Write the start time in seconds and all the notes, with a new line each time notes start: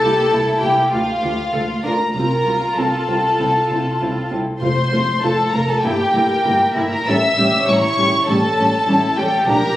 Already playing: A4 A5
0.02 C2 A#3 E4 G4
0.31 C2 A#3 E4
0.61 C2 A#3 E4 G4 G5
0.91 D2 A3 F4 F5
1.22 D2 A3 F4 G4
1.53 D2 A3 F4 A4
1.83 D2 A3 D4 F4 A#4 A#5
2.14 C2 C4 F4 A#4 A#5
2.45 C2 C4 F4
2.76 C2 C4 F4 A4 A5
3.07 C2 C4 F4
3.38 C2 C4 E4
3.69 C2 C4 E4
4.01 C2 C4 E4
4.31 C2 C4 E4
4.61 F1 A3 F4 C5 C6
4.92 F1 A3 F4
5.22 F1 A3 F4 A4 A5
5.52 F1 A3 F4 A#4 A#5
5.68 A4 A5
5.82 G1 A#3 E4 G4 G5
6.14 G1 A#3 E4 A#4
6.45 G1 A#3 E4
6.74 G1 A#3 E4 E5
6.92 A#4 A#5
7.06 A1 G3 C#4 A4 E5 E6
7.37 A1 G3 C#4 G4
7.66 A1 G3 C#4 E4 C#5 C#6
7.75 A#5
7.81 C#6
7.97 A1 G3 C#4
8.27 A1 G3 C#4 A4 A5
8.58 A1 G3 C#4
8.87 A1 G3 C#4 E4
9.17 A1 G3 C#4 G4 A4 G5
9.47 A#1 F3 D4 G4 A#4 A#5